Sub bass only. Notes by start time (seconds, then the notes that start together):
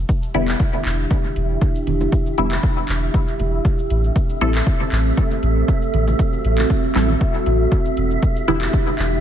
0.34 E1
0.85 E1
1.36 E1
1.87 E1
2.38 E1
2.89 E1
3.39 E1
3.90 A1
4.41 A1
4.92 A1
5.43 A1
5.94 A1
6.45 A1
6.95 A1
7.46 A1
7.97 E1
8.48 E1
8.99 E1